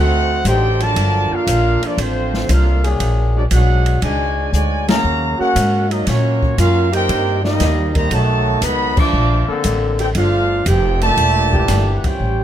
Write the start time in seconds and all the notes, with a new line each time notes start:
Already playing: D2 A3 C4 D#4 F#4 A4 C5 F#5
0.45 A1 F#3 D4 D#4 G4 A4 C5 G5, hi-hat pedal, ride
0.80 D3 F3 F#3 F4 A#4 D5 A5, ride
0.96 G1, ride
1.31 A#3 D4 F4 A4 A#4 F5, muted upright bass stroke
1.47 A#1, hi-hat pedal, ride
1.82 F3 A#3 D4 F4 A4 D5, muted upright bass stroke, ride
1.97 A1 D3 F3 A#3 C4 F4 A4 C5, ride
2.34 snare
2.49 C2 A#3 D4 F4 A4 A#4 F5, hi-hat pedal, ride
2.84 F#3 A#3 D4 G#4, ride
3.00 A#1, ride
3.36 F#3 G#3 C#4 D4 F#4 D5
3.51 B1 G#3 D4 F#4 G#4 C#5 F#5, hi-hat pedal, ride
3.86 ride
4.02 C#2 G#2 G#3 D4 F#4 C#5 D5 G#5, ride
4.53 D2 G#2 D3 G#3 F#4 C#5 D5 G#5, hi-hat pedal
4.87 C#3 F#3 A#3 C#4 F#4 G#4 C#5 F5 A#5, snare, ride
5.04 D#2
5.38 A#3 C#4 F#4 A#4 F5 F#5, muted upright bass stroke
5.56 G#2, hi-hat pedal, ride
5.90 F#3 A#3 C#4 D#4 F#4 A#4 D#5, ride
6.06 A#2 F#3 A#3 C#4 F4 F#4 C#5, snare, ride
6.43 kick
6.57 F#2 A#3 C#4 F4 F#4 A#4 F5, hi-hat pedal, ride
6.92 A#3 D#4 G4 A#4 C5 G5, ride
7.09 G2 G3 C4 D#4 A#4, ride
7.42 G3 A#3 C4 D#4 G4 A#4 D#5, snare
7.60 D#2, snare, hi-hat pedal, ride
7.94 D#3 G3 A#3 G4 C5 D#5 A#5, kick, ride
8.10 B1 D#3 F#3 A3 F#4 D#5, ride
8.14 C#5 A5
8.61 C#2 D#3 F#3 B3 A4 D#5 F#5 B5, hi-hat pedal, ride
8.97 F3 A3 D4 C5 F5 A5 D6, kick, crash
9.13 A#1
9.48 D3 A#3 C4 A4, muted upright bass stroke
9.64 A1, hi-hat pedal, ride
9.99 D#4 G4 A4 C5 G5, ride
10.15 G1 A3 D4 F4 A4 C5 F5, ride
10.66 F1 D#4 G4 A4 C5 G5, hi-hat pedal, ride
11.01 A#2 D3 A3 G4 D5 E5 A5, ride
11.17 E1, ride
11.53 A#2 E3 D4 G4, kick
11.68 G1, snare, hi-hat pedal, ride
11.96 F#5
12.04 G3 C#4 F4 G4 C5 C#5 G5, muted upright bass stroke, kick, ride
12.20 A1